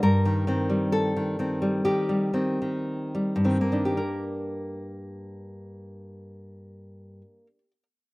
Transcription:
\new Staff \with { instrumentName = "Nylon-string guitar" } { \clef bass \time 4/4 \key g \minor \tempo 4 = 58 << { bes'4 a'4 g'4. r8 | <g, bes d' g' bes'>1 | } \\ { g,16 ees16 <ees c'>16 g8 ees16 <ees c'>16 g16 ees16 g16 <ees c'>16 ees8 g16 <ees c'>16 ees16 | r1 | } >> }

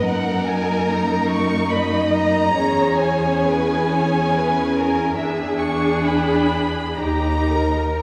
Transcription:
<<
  \new Staff \with { instrumentName = "Violin section" } { \time 3/4 \key dis \phrygian \tempo 4 = 69 fis''8 gis''8 ais''8 cis'''8 b''8 ais''8~ | ais''8 gis''2~ gis''8 | e''8 cis'''8 b''4 ais''4 | }
  \new Staff \with { instrumentName = "Violin section" } { \time 3/4 \key dis \phrygian ais'2 dis''4 | cis''4 b'8 cis''8 b'8 ais'8 | gis'2 g'8 ais'8 | }
  \new Staff \with { instrumentName = "Viola section" } { \time 3/4 \key dis \phrygian << { dis'2. | gis'2. | gis'2 g'8 ais'8 | } \\ { ais2. | cis'2. | d'2 dis'4 | } >> }
  \new Staff \with { instrumentName = "Cello section" } { \clef bass \time 3/4 \key dis \phrygian fis,2. | e,2. | e,2 dis,4 | }
>>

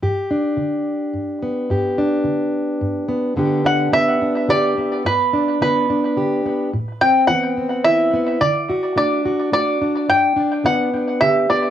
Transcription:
<<
  \new Staff \with { instrumentName = "Five-string banjo" } { \time 3/4 \key g \major \tempo 4 = 107 r2. | r2. | r8 fis''8 e''4 d''4 | b'4 b'4. r8 |
r8 g''8 fis''4 e''4 | d''4 d''4 d''4 | g''4 fis''4 e''8 d''8 | }
  \new Staff \with { instrumentName = "Steel-string acoustic guitar" } { \time 3/4 \key g \major << { g'8 d'2 b8 | g'8 d'2 b8 | <d b d' g'>8 d'8 b8 d'8 g'8 b8 | r8 d'8 b8 d'8 g'8 b8 |
r8 c'8 b8 c'8 e'8 b8 | r8 fis'8 d'8 fis'8 fis'8 d'8 | r8 d'8 b8 d'8 g'8 b8 | } \\ { g,4 d4 g,4 | g,4 d4 g,4 | g,4 d4 d4 | g,4 d4 d4 |
a,4 e4 e4 | d4 a4 a4 | g,4 d4 d4 | } >> }
>>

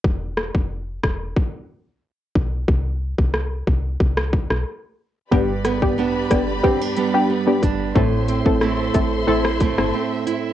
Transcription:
<<
  \new Staff \with { instrumentName = "String section" } { \time 4/4 \key a \minor \tempo 4 = 91 r1 | r1 | <g' b' d'' b''>1 | <a' c'' e'' c'''>1 | }
  \new Staff \with { instrumentName = "Synth stab" } { \time 4/4 \key a \minor r1 | r1 | <g b d' g'>16 r8 <g b d' g'>16 r8 <g b d' g'>16 r16 <g b d' g'>8. <g b d' g'>16 r16 <g b d' g'>16 r8 | <a c' e' a'>8. <a c' e' a'>16 r8 <a c' e' a'>16 r16 <a c' e' a'>16 r8 <a c' e' a'>16 r4 | }
  \new Staff \with { instrumentName = "Nylon-string guitar" } { \time 4/4 \key a \minor r1 | r1 | g,8 b8 <g b d'>4 c'16 d'16 <g b d'>8 b8 d'8 | a,8 c'8 <a c' e'>4 e'8 <a c' e'>8 c'8 e'8 | }
  \new Staff \with { instrumentName = "FM bass" } { \clef bass \time 4/4 \key a \minor e,,8. f,,8. e,,8 r4. b,,8 | c,8. c,8. c,8 c,8. b,,16 r4 | g,,8. a,,8. g,,8 r4. g,,8 | a,,8. a,,8. a,,8 a,,8. g,,16 r4 | }
  \new DrumStaff \with { instrumentName = "Drums" } \drummode { \time 4/4 bd8 ss16 bd16 r8 <bd ss>8 bd4 r8 bd8 | bd8. bd16 ss8 bd8 bd16 ss16 bd16 ss16 r4 | bd8 <hh ss>16 bd16 r8 <hh bd ss>8 bd8 hh8 r8 <hh bd>8 | bd8 hh16 bd16 ss8 <hh bd>8 r16 ss16 <hh bd>16 ss16 r8 hh8 | }
>>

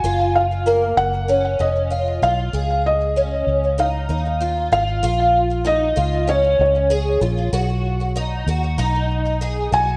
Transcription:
<<
  \new Staff \with { instrumentName = "Felt piano" } { \time 4/4 \key ais \phrygian \tempo 4 = 96 gis''8 eis''4 fis''4 dis''4 eis''8~ | eis''8 dis''4. eis''4. eis''8~ | eis''4 dis''4 cis''8 cis''4 r8 | r2. r8 gis''8 | }
  \new Staff \with { instrumentName = "Twelve-string acoustic guitar" } { \time 4/4 \key ais \phrygian eis'4 ais4 cis'8 cis'8 eis'8 eis'8 | gis'4 cis'4 dis'8 dis'8 eis'8 eis'8 | eis'4 dis'8 eis'8 cis'4 gis'8 eis'8 | fis'4 dis'8 fis'8 dis'4 gis'8 fis'8 | }
  \new Staff \with { instrumentName = "Fingered electric bass" } { \clef bass \time 4/4 \key ais \phrygian fis,,4. fis,,4 eis,,4 b,,8 | cis,4. cis,4 dis,4 gis,,8 | ais,,4. cis,4 cis,4 ais,,8 | b,,4. dis,8 b,,4. b,,8 | }
>>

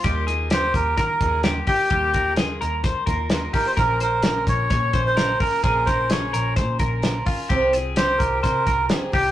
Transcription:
<<
  \new Staff \with { instrumentName = "Clean electric guitar" } { \time 4/4 \key bes \dorian \tempo 4 = 129 g'8 aes'8 g'4 bes'8 aes'8 g'8 g'8 | g'8 bes'8 aes'8 bes'8 c''8 bes'4 g'8 | bes'8 c''8 bes'4 des''8 c''8 bes'8 bes'8 | aes'8 bes'8 aes'8 bes'8 c''8 bes'4 f'8 |
g'8 aes'8 g'4 c''8 bes'8 aes'8 g'8 | }
  \new Staff \with { instrumentName = "Melodica" } { \time 4/4 \key bes \dorian r4 c''8 bes'8 bes'4 r8 g'8~ | g'4 r2 r8 bes'16 c''16 | bes'8 bes'4 des''4~ des''16 c''8. bes'8 | bes'8 c''8 des''4 r2 |
r4 c''8 bes'8 bes'4 r8 g'8 | }
  \new Staff \with { instrumentName = "Steel-string acoustic guitar" } { \time 4/4 \key bes \dorian <ees g bes ees' f'>8 <bes ees' f'>8 <ees' f'>4. <bes ees' f'>8 <g bes ees' f'>8 <bes ees' f'>8 | <ees g bes ees' f'>8 <bes ees' f'>8 <g bes ees' f'>4. <bes ees' f'>8 <g bes ees' f'>8 <bes ees' f'>8 | <bes, f bes des' f'>8 <bes des' f'>8 <f bes des' f'>4. <bes des' f'>8 <f bes des' f'>8 <bes des' f'>8 | <bes, f bes des' f'>8 <bes des' f'>8 <f bes des' f'>4. <bes des' f'>8 <f bes des' f'>8 <bes des' f'>8 |
<c f c' f' g'>8 <c' f' g'>8 <f c' f' g'>4. <c' f' g'>8 <f c' f' g'>8 <c' f' g'>8 | }
  \new Staff \with { instrumentName = "Picked electric bass" } { \clef bass \time 4/4 \key bes \dorian ees,4. ees,8 ees8 ees,4 r8 | ees,4. ees,8. r16 ees,4 r8 | bes,,4. bes,,8 bes,8 bes,,4 r8 | bes,,4. bes,,8 bes,8 bes,,4 r8 |
c,4. c,8 c8 c,8 g,,8 c,8 | }
  \new DrumStaff \with { instrumentName = "Drums" } \drummode { \time 4/4 <hh bd>8 hh8 <hh sn>8 <hh bd>8 <hh bd sn>8 <hh bd>8 <hh sn>8 <hho bd>8 | <hh bd>8 <hh bd>8 <hh sn>8 hh8 <hh bd sn>8 <hh bd>8 <hh sn>8 <hho bd>8 | <hh bd>8 hh8 <hh sn>8 <hh bd>8 <hh bd sn>8 <hh bd>8 <hh sn>8 <hho bd>8 | <hh bd>8 <hh bd>8 <hh sn>8 hh8 <hh bd sn>8 <hh bd>8 <hh sn>8 <hho bd>8 |
<hh bd>8 hh8 <hh sn>8 <hh bd>8 <hh bd sn>8 <hh bd>8 <hh sn>8 <hho bd>8 | }
>>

